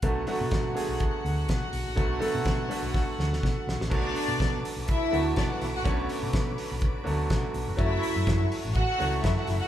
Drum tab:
CC |----------------|----------------|x---------------|----------------|
HH |x-o-x-o-x-o-x-o-|x-o-x-o---------|--o-x-o-x-o-x-o-|x-o-x-o-x-o-x-o-|
SD |----o-------o---|----o---o-ooo-oo|----o-------o-o-|----o-------o---|
BD |o---o---o---o---|o---o---o---o---|o---o---o---o---|o---o---o---o---|

CC |----------------|
HH |x-o-x-o-x-o-x-o-|
SD |----o-------o-o-|
BD |o---o---o---o---|